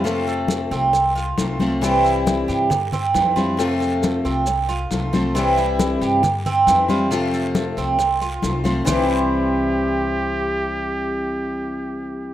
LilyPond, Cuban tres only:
\new Staff \with { instrumentName = "Cuban tres" } { \time 4/4 \key c \major \tempo 4 = 136 f'8 a'4 c'4 f'4 c''8 | c'8 e'4 g'4 c'4 f'8~ | f'8 a'4 c'4 f'4 c''8 | c'8 e'4 g'4 c'4 f'8~ |
f'8 a'4 c'4 f'4 c''8 | <c' g' c''>1~ | <c' g' c''>1 | }